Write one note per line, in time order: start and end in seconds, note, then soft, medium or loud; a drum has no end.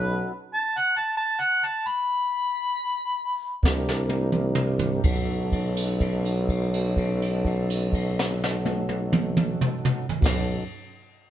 0.00 0.28 B1 medium
0.00 0.32 C#4 medium
0.00 0.32 D#4 medium
0.00 0.32 F#4 medium
0.00 0.32 A4 medium
0.00 0.36 B4 medium
0.53 0.79 A5 medium
0.78 0.96 F#5 medium
0.97 1.16 A5 medium
1.17 1.42 A5 medium
1.41 1.67 F#5 medium
1.65 1.89 A5 medium
1.88 3.62 B5 medium
3.63 5.01 C2 medium
3.63 5.03 D4 medium
3.63 5.03 E4 medium
3.63 5.03 G4 medium
3.63 5.03 A#4 medium
3.63 kick medium
3.63 snare medium
3.89 snare medium
4.09 high tom medium
4.32 mid tom medium
4.55 mid tom medium
4.79 floor tom medium
5.03 9.76 B1 medium
5.03 10.07 C#4 medium
5.03 10.07 D#4 medium
5.03 10.07 F#4 medium
5.03 10.07 A4 medium
5.03 kick medium
5.03 crash medium
5.52 kick medium
5.52 crash soft
5.76 crash soft
6.00 kick medium
6.00 crash soft
6.25 crash soft
6.49 kick medium
6.49 crash soft
6.74 crash soft
6.97 kick medium
6.97 crash soft
7.22 crash soft
7.45 kick medium
7.45 crash soft
7.70 crash soft
7.93 kick medium
7.93 crash soft
8.19 snare medium
8.44 snare medium
8.65 high tom medium
8.89 high tom medium
9.13 mid tom medium
9.37 mid tom medium
9.61 mid tom medium
9.85 mid tom medium
10.09 floor tom medium
10.20 10.62 B1 medium
10.20 10.65 C#4 medium
10.20 10.64 D#4 medium
10.20 10.64 F#4 medium
10.20 10.64 A4 medium
10.20 kick medium
10.20 crash medium
10.26 snare medium